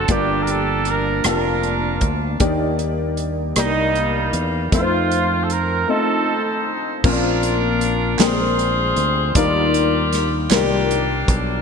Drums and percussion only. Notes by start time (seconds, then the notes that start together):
0.08 kick, closed hi-hat
0.47 closed hi-hat
0.85 cross-stick, closed hi-hat
1.24 cross-stick, closed hi-hat
1.63 closed hi-hat
2.01 kick, closed hi-hat
2.40 kick, closed hi-hat
2.79 closed hi-hat
3.17 closed hi-hat
3.56 cross-stick, closed hi-hat
3.96 closed hi-hat
4.33 closed hi-hat
4.72 kick, closed hi-hat
5.11 closed hi-hat
5.50 cross-stick, closed hi-hat
7.04 kick, crash
7.43 closed hi-hat
7.81 closed hi-hat
8.19 snare, clap, closed hi-hat
8.59 closed hi-hat
8.97 closed hi-hat
9.35 kick, closed hi-hat
9.74 closed hi-hat
10.13 snare, closed hi-hat
10.51 snare, clap, closed hi-hat
10.91 closed hi-hat
11.28 kick, closed hi-hat